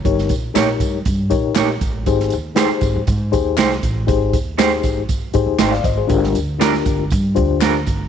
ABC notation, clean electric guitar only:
X:1
M:4/4
L:1/8
Q:1/4=119
K:Ablyd
V:1 name="Clean electric guitar"
z2 [B,EG_d] z3 [B,EGd] z | z2 [A,EGc] z3 [A,EGc] z | z2 [A,EGc] z3 [A,EGc] z | z2 [G,DFB] z3 [G,DFB] z |]